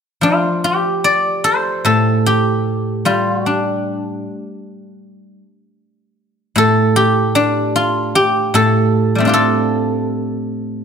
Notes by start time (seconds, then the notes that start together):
0.21 F3 F4
0.64 G4
1.04 D5
1.44 C5
1.85 A2 A4
2.26 G4
3.05 G3 F4
3.34 F#4
3.46 D4
3.51 G4
6.56 A2 A4
6.96 G4
7.35 D4
7.76 F4
8.15 G4
8.54 A2 A4
9.15 G3 A3
9.20 C4
9.25 D4 F4 G4
9.34 A4